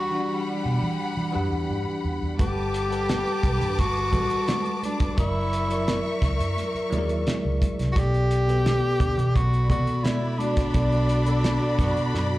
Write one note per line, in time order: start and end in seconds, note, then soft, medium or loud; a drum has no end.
0.00 0.11 E3 medium
0.00 0.20 G3 medium
0.00 2.35 G3 medium
0.00 0.12 D4 medium
0.00 0.66 F#4 loud
0.00 0.15 F#5 medium
0.00 2.35 F#5 medium
0.00 2.35 B5 medium
0.11 1.02 E3 medium
0.11 1.02 D4 medium
0.11 0.19 F#4 medium
0.11 1.03 F#5 medium
0.20 1.06 G3 medium
0.65 0.80 B2 medium
0.83 0.98 E3 medium
1.17 1.32 E3 medium
1.32 1.50 F#2 medium
1.32 2.10 E3 medium
1.32 2.11 D4 medium
1.32 2.11 G4 medium
1.32 2.12 F#5 loud
1.52 1.67 E2 medium
1.70 1.85 G2 medium
2.04 2.20 E2 medium
2.23 2.38 E2 medium
2.38 3.22 G1 loud
2.38 2.77 G3 medium
2.38 3.81 G4 loud
2.38 2.78 A4 medium
2.38 5.14 B4 medium
2.38 2.78 B4 medium
2.38 2.77 F#5 medium
2.38 5.14 A5 medium
2.38 5.14 D6 loud
2.38 kick loud
2.38 closed hi-hat medium
2.38 muted conga medium
2.74 closed hi-hat medium
2.89 3.80 G3 medium
2.89 3.81 A4 medium
2.89 3.82 B4 medium
2.89 3.80 F#5 medium
2.89 closed hi-hat soft
3.09 snare loud
3.09 closed hi-hat medium
3.09 high conga medium
3.27 closed hi-hat soft
3.43 3.59 B1 medium
3.43 kick medium
3.43 closed hi-hat medium
3.61 3.77 G2 medium
3.61 closed hi-hat soft
3.61 low conga medium
3.79 4.10 G1 medium
3.79 4.83 F#4 loud
3.79 kick medium
3.79 closed hi-hat medium
3.79 muted conga soft
4.11 4.29 A1 loud
4.11 4.89 G3 medium
4.11 4.90 F#4 medium
4.11 4.90 A4 medium
4.11 4.91 B4 medium
4.11 kick medium
4.11 closed hi-hat medium
4.11 muted conga medium
4.11 low conga medium
4.30 closed hi-hat soft
4.48 snare loud
4.48 closed hi-hat medium
4.48 high conga medium
4.65 closed hi-hat soft
4.83 5.16 D4 medium
4.83 closed hi-hat medium
4.83 high conga medium
5.00 kick medium
5.00 closed hi-hat medium
5.16 6.01 F#1 loud
5.16 5.55 F#3 medium
5.16 5.56 E4 medium
5.16 6.19 E4 medium
5.16 7.93 A#4 medium
5.16 5.56 A#4 medium
5.16 5.57 D5 medium
5.16 7.92 E5 medium
5.16 7.92 C#6 loud
5.16 kick loud
5.16 closed hi-hat medium
5.16 muted conga medium
5.53 closed hi-hat medium
5.68 6.59 F#3 medium
5.68 6.59 E4 medium
5.68 6.60 A#4 medium
5.68 6.60 D5 medium
5.68 closed hi-hat medium
5.88 snare loud
5.88 closed hi-hat medium
5.88 high conga medium
6.22 6.38 C#2 medium
6.22 kick medium
6.22 snare soft
6.22 closed hi-hat medium
6.40 6.55 F#2 medium
6.40 closed hi-hat medium
6.57 closed hi-hat medium
6.57 muted conga soft
6.74 muted fingered electric bass stroke soft
6.74 closed hi-hat soft
6.90 7.23 D#2 medium
6.90 7.68 F#3 medium
6.90 7.68 E4 medium
6.90 6.98 G#4 medium
6.90 7.69 D5 loud
6.90 closed hi-hat medium
6.90 muted conga medium
6.90 low conga medium
6.99 7.72 A#4 medium
7.09 closed hi-hat soft
7.27 muted fingered electric bass stroke soft
7.27 snare loud
7.27 closed hi-hat medium
7.27 high conga medium
7.45 7.60 C#2 medium
7.61 kick medium
7.61 closed hi-hat medium
7.61 high conga medium
7.79 7.95 C2 medium
7.79 snare soft
7.79 closed hi-hat medium
7.92 8.34 B2 medium
7.92 8.34 B3 medium
7.92 7.99 F#4 medium
7.92 kick loud
7.92 closed hi-hat medium
7.96 8.79 B1 loud
7.96 9.37 G4 loud
7.96 8.35 A4 medium
7.96 8.35 D5 medium
7.96 muted conga medium
8.14 closed hi-hat soft
8.31 closed hi-hat medium
8.47 9.37 B2 medium
8.47 9.38 B3 medium
8.47 9.38 A4 medium
8.47 9.39 B4 medium
8.47 closed hi-hat medium
8.66 snare loud
8.66 closed hi-hat medium
8.66 high conga medium
9.00 9.16 D2 medium
9.00 kick medium
9.00 closed hi-hat medium
9.17 9.34 B2 medium
9.17 closed hi-hat medium
9.17 low conga medium
9.35 9.70 B1 medium
9.35 12.38 F#4 medium
9.35 9.69 F#4 loud
9.35 12.38 D5 medium
9.35 12.38 B5 loud
9.35 kick medium
9.35 closed hi-hat medium
9.35 muted conga soft
9.54 closed hi-hat soft
9.69 9.86 C2 medium
9.69 10.46 B2 medium
9.69 10.47 B3 medium
9.69 10.05 F#4 loud
9.69 10.47 A4 medium
9.69 10.48 D5 medium
9.69 kick medium
9.69 closed hi-hat medium
9.69 muted conga medium
9.69 low conga medium
9.87 closed hi-hat soft
10.04 10.40 E4 medium
10.04 snare loud
10.04 closed hi-hat medium
10.04 high conga medium
10.38 12.38 D4 medium
10.38 closed hi-hat medium
10.38 high conga medium
10.57 kick loud
10.57 snare soft
10.57 closed hi-hat medium
10.74 11.58 B1 loud
10.74 11.13 B2 medium
10.74 11.13 B3 medium
10.74 11.14 A4 medium
10.74 11.14 D5 medium
10.74 kick loud
10.74 closed hi-hat medium
10.74 muted conga medium
10.92 closed hi-hat soft
11.09 closed hi-hat medium
11.26 12.16 B2 medium
11.26 12.17 B3 medium
11.26 12.17 A4 medium
11.26 12.18 D5 loud
11.26 closed hi-hat medium
11.44 snare loud
11.44 closed hi-hat medium
11.44 high conga medium
11.79 11.95 F#2 medium
11.79 12.29 D3 medium
11.79 12.29 B3 medium
11.79 12.29 F#4 medium
11.79 kick medium
11.79 snare soft
11.79 closed hi-hat medium
11.97 12.12 B2 medium
11.97 closed hi-hat soft
12.14 12.38 F#2 medium
12.14 snare medium